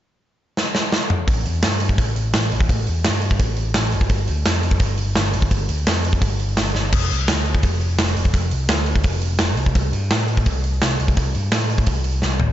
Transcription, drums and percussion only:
0.57 snare
0.75 snare
0.92 snare
1.10 mid tom
1.28 kick, open hi-hat
1.46 open hi-hat
1.63 snare, open hi-hat
1.80 open hi-hat
1.89 kick
1.98 kick, open hi-hat
2.16 open hi-hat
2.34 snare, open hi-hat
2.52 open hi-hat
2.61 kick
2.69 kick, open hi-hat
2.87 open hi-hat
3.04 snare, open hi-hat
3.22 open hi-hat
3.31 kick
3.40 kick, open hi-hat
3.57 open hi-hat
3.74 snare, open hi-hat
3.92 open hi-hat
4.01 kick
4.10 kick, open hi-hat
4.28 open hi-hat
4.45 snare, open hi-hat
4.63 open hi-hat
4.71 kick
4.80 kick, open hi-hat
4.98 open hi-hat
5.15 snare, open hi-hat
5.34 open hi-hat
5.42 kick
5.51 kick, open hi-hat
5.69 open hi-hat
5.87 snare, open hi-hat
6.05 open hi-hat
6.13 kick
6.22 kick, open hi-hat
6.40 open hi-hat
6.57 snare, open hi-hat
6.75 snare
6.93 kick, crash
7.11 open hi-hat
7.28 snare, open hi-hat
7.46 open hi-hat
7.55 kick
7.63 kick, open hi-hat
7.81 open hi-hat
7.98 snare, open hi-hat
8.17 open hi-hat
8.25 kick
8.34 kick, open hi-hat
8.51 open hi-hat
8.69 snare, open hi-hat
8.86 open hi-hat
8.96 kick
9.04 kick, open hi-hat
9.22 open hi-hat
9.39 snare, open hi-hat
9.57 open hi-hat
9.66 kick
9.75 kick, open hi-hat
9.93 open hi-hat
10.11 snare, open hi-hat
10.28 open hi-hat
10.37 kick
10.46 kick, open hi-hat
10.64 open hi-hat
10.82 snare, open hi-hat
11.00 open hi-hat
11.08 kick
11.17 kick, open hi-hat
11.35 open hi-hat
11.52 snare, open hi-hat
11.70 open hi-hat
11.78 kick
11.87 kick, open hi-hat
12.04 open hi-hat
12.22 snare
12.40 floor tom

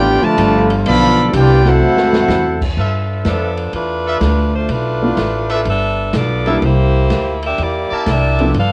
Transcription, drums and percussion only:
0.38 kick, hi-hat pedal, ride
0.70 ride
0.86 kick, ride
1.33 kick, hi-hat pedal, ride
1.65 snare
1.97 snare
2.13 snare
2.29 snare, hi-hat pedal
2.61 kick, crash
2.77 kick
3.25 kick, snare, hi-hat pedal, ride
3.57 ride
3.73 kick, ride
4.21 kick, snare, hi-hat pedal, ride
4.69 kick, ride
5.17 kick, snare, hi-hat pedal, ride
5.50 ride
5.65 kick, ride
6.13 kick, snare, hi-hat pedal, ride
6.46 ride
6.62 kick, ride
7.10 snare, hi-hat pedal, ride
7.43 ride
7.58 kick, ride
8.06 kick, snare, hi-hat pedal, ride
8.39 ride
8.54 kick, ride

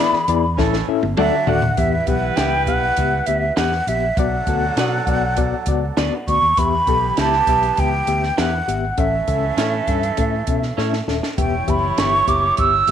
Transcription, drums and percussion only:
0.13 snare
0.28 closed hi-hat
0.58 kick, snare
0.73 snare
1.03 high tom
1.17 mid tom
1.47 floor tom
1.62 floor tom
1.77 kick, closed hi-hat
2.07 kick, closed hi-hat
2.37 snare, closed hi-hat
2.67 kick, closed hi-hat
2.96 kick, closed hi-hat
3.26 closed hi-hat
3.57 snare, closed hi-hat
3.72 snare
3.87 closed hi-hat
4.17 kick, closed hi-hat
4.47 kick, closed hi-hat
4.77 snare, closed hi-hat
5.07 kick, closed hi-hat
5.36 kick, closed hi-hat
5.66 kick, closed hi-hat
5.97 snare, closed hi-hat
6.28 kick, closed hi-hat
6.57 kick, closed hi-hat
6.87 kick, closed hi-hat
7.17 snare, closed hi-hat
7.32 snare
7.47 kick, closed hi-hat
7.63 closed hi-hat
7.77 kick, closed hi-hat
8.07 closed hi-hat
8.23 snare
8.38 snare, closed hi-hat
8.68 closed hi-hat
8.98 kick, closed hi-hat
9.28 kick, closed hi-hat
9.58 snare, closed hi-hat
9.87 kick, closed hi-hat
10.03 closed hi-hat
10.17 kick, closed hi-hat
10.47 kick, closed hi-hat
10.62 snare
10.78 snare
10.93 snare
11.08 snare
11.23 snare
11.38 kick, closed hi-hat
11.68 kick, closed hi-hat
11.98 snare, closed hi-hat
12.28 kick, closed hi-hat
12.57 kick, closed hi-hat
12.87 closed hi-hat

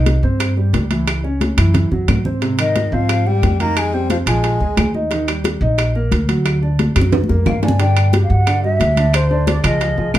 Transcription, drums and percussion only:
0.06 high bongo, high conga, high timbale
0.23 high bongo, high conga
0.40 high bongo, high conga, high timbale, claves
0.57 high bongo, high conga
0.74 high bongo, low bongo, high conga, high timbale
0.91 high conga, high timbale
1.07 high bongo, high conga, high timbale, claves
1.24 high bongo, high conga
1.41 high bongo, high conga, high timbale
1.58 high bongo, high conga, high timbale, claves
1.74 high bongo, low conga, high timbale
1.91 high bongo, low conga
2.08 high bongo, low bongo, low conga, high timbale, low timbale, claves
2.25 low conga
2.42 high bongo, high conga, high timbale
2.59 high bongo, high conga, high timbale, claves
2.76 high bongo, high conga, high timbale
2.92 high bongo, high conga
3.09 high bongo, high conga, high timbale, claves
3.26 high bongo, high conga
3.43 high bongo, low bongo, high conga, high timbale
3.60 high conga, high timbale
3.76 high bongo, high conga, high timbale, claves
3.93 high bongo, high conga
4.10 high bongo, high conga, high timbale
4.27 high bongo, high timbale, claves
4.44 high bongo, high conga, high timbale
4.61 high bongo, high conga
4.77 high bongo, low bongo, high conga, high timbale, low timbale, claves
4.94 high conga
5.11 high bongo, high conga, high timbale
5.28 high bongo, high conga, high timbale, claves
5.44 high bongo, high conga, high timbale
5.61 high bongo, high conga
5.78 high bongo, high conga, high timbale, claves
5.95 high bongo, high conga
6.12 high bongo, low bongo, high conga, high timbale
6.29 high conga, high timbale
6.46 high bongo, high conga, high timbale, claves
6.63 high bongo, high conga
6.79 high bongo, high conga, high timbale
6.96 high bongo, high timbale, claves
7.01 low conga
7.12 high bongo, low conga, high timbale
7.24 high conga
7.29 high bongo
7.46 low bongo, low conga, low timbale, claves
7.63 low bongo, low timbale
7.68 low conga
7.80 high bongo, high conga, high timbale
7.96 high bongo, high conga, high timbale, claves
8.13 high bongo, high conga, high timbale
8.30 high bongo, high conga
8.47 high bongo, high conga, high timbale, claves
8.64 high bongo, high conga
8.80 high bongo, low bongo, high conga, high timbale
8.97 high conga, high timbale
9.14 high bongo, high conga, high timbale, claves
9.30 high bongo, high conga
9.47 high bongo, high conga, high timbale
9.64 high bongo, high conga, high timbale, claves
9.81 high bongo, high conga, high timbale
9.97 high bongo, high conga
10.14 high bongo, low bongo, high conga, high timbale, claves

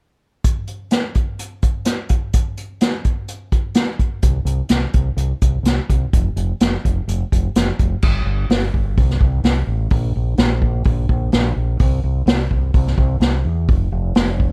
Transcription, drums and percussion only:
0.44 kick, closed hi-hat
0.67 closed hi-hat
0.91 snare, closed hi-hat
1.15 kick, closed hi-hat
1.39 closed hi-hat
1.62 kick, closed hi-hat
1.85 snare, closed hi-hat
2.09 kick, closed hi-hat
2.33 kick, closed hi-hat
2.57 closed hi-hat
2.81 snare, closed hi-hat
3.04 kick, closed hi-hat
3.28 closed hi-hat
3.52 kick, closed hi-hat
3.74 snare, closed hi-hat
3.99 kick, closed hi-hat
4.22 kick, closed hi-hat
4.46 closed hi-hat
4.69 snare, closed hi-hat
4.93 kick, closed hi-hat
5.18 closed hi-hat
5.42 kick, closed hi-hat
5.65 snare, closed hi-hat
5.90 kick, closed hi-hat
6.13 kick, closed hi-hat
6.37 closed hi-hat
6.60 snare, closed hi-hat
6.85 kick, closed hi-hat
7.08 closed hi-hat
7.32 kick, closed hi-hat
7.55 snare, closed hi-hat
7.79 kick, closed hi-hat
8.02 kick, crash
8.50 snare, open hi-hat
8.74 kick
8.98 kick, open hi-hat
9.10 snare
9.21 kick
9.44 snare, open hi-hat
9.90 kick, open hi-hat
10.37 snare, open hi-hat
10.62 kick
10.84 kick, open hi-hat
11.09 kick
11.32 snare, open hi-hat
11.79 kick, open hi-hat
12.27 snare, open hi-hat
12.51 kick
12.74 kick, open hi-hat
12.87 snare
12.98 kick
13.21 snare, open hi-hat
13.68 kick, open hi-hat
14.15 snare, open hi-hat
14.40 kick

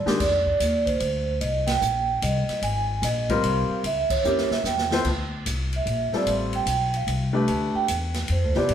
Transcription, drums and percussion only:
0.07 snare
0.20 kick, snare, crash
0.46 kick
0.60 hi-hat pedal, ride
0.87 kick, ride
1.00 ride
1.41 ride
1.67 snare, ride
1.82 hi-hat pedal
2.22 hi-hat pedal, ride
2.49 snare, ride
2.62 ride
3.03 snare, hi-hat pedal, ride
3.29 kick, ride
3.44 ride
3.84 ride
4.10 kick, crash
4.25 hi-hat pedal
4.38 snare
4.51 snare
4.65 snare, hi-hat pedal
4.78 snare
4.91 snare
5.05 kick, crash
5.46 hi-hat pedal, ride
5.73 ride
5.87 ride
6.12 snare
6.27 ride
6.53 ride
6.67 hi-hat pedal, ride
6.94 ride
7.08 ride
7.48 ride
7.88 hi-hat pedal, ride
8.14 snare, ride
8.28 ride
8.54 snare
8.69 ride

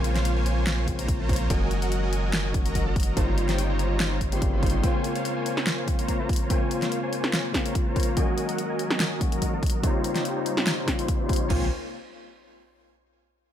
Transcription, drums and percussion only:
0.04 closed hi-hat
0.16 snare, closed hi-hat
0.25 closed hi-hat
0.46 closed hi-hat
0.67 snare, closed hi-hat
0.88 kick, closed hi-hat
0.99 closed hi-hat
1.08 kick, closed hi-hat
1.29 kick, closed hi-hat
1.33 closed hi-hat
1.36 closed hi-hat
1.50 kick, closed hi-hat
1.71 closed hi-hat
1.82 closed hi-hat
1.92 closed hi-hat
2.13 closed hi-hat
2.33 snare, closed hi-hat
2.54 kick, closed hi-hat
2.66 closed hi-hat
2.75 kick, closed hi-hat
2.96 kick, closed hi-hat
3.00 closed hi-hat
3.03 closed hi-hat
3.17 kick, closed hi-hat
3.38 closed hi-hat
3.49 snare, closed hi-hat
3.58 closed hi-hat
3.79 closed hi-hat
4.00 snare, closed hi-hat
4.21 kick, closed hi-hat
4.32 closed hi-hat
4.42 kick, closed hi-hat
4.63 kick, closed hi-hat
4.66 closed hi-hat
4.70 closed hi-hat
4.83 kick, closed hi-hat
5.04 closed hi-hat
5.16 closed hi-hat
5.25 closed hi-hat
5.46 closed hi-hat
5.57 snare
5.67 snare, closed hi-hat
5.88 kick, closed hi-hat
5.99 closed hi-hat
6.08 kick, closed hi-hat
6.29 kick, closed hi-hat
6.33 closed hi-hat
6.36 closed hi-hat
6.50 kick, closed hi-hat
6.71 closed hi-hat
6.82 snare, closed hi-hat
6.92 closed hi-hat
7.13 closed hi-hat
7.24 snare
7.33 snare, closed hi-hat
7.54 kick, snare, closed hi-hat
7.66 closed hi-hat
7.75 kick, closed hi-hat
7.96 kick, closed hi-hat
8.00 closed hi-hat
8.03 closed hi-hat
8.17 kick, closed hi-hat
8.38 closed hi-hat
8.49 closed hi-hat
8.58 closed hi-hat
8.79 closed hi-hat
8.91 snare
9.00 snare, closed hi-hat
9.21 kick, closed hi-hat
9.32 closed hi-hat
9.42 kick, closed hi-hat
9.63 kick, closed hi-hat
9.66 closed hi-hat
9.70 closed hi-hat
9.83 kick, closed hi-hat
10.04 closed hi-hat
10.16 snare, closed hi-hat
10.25 closed hi-hat
10.46 closed hi-hat
10.57 snare
10.67 snare, closed hi-hat
10.88 kick, snare, closed hi-hat
10.99 closed hi-hat
11.08 kick, closed hi-hat
11.29 kick, closed hi-hat
11.33 closed hi-hat
11.36 closed hi-hat
11.50 kick, floor tom, crash

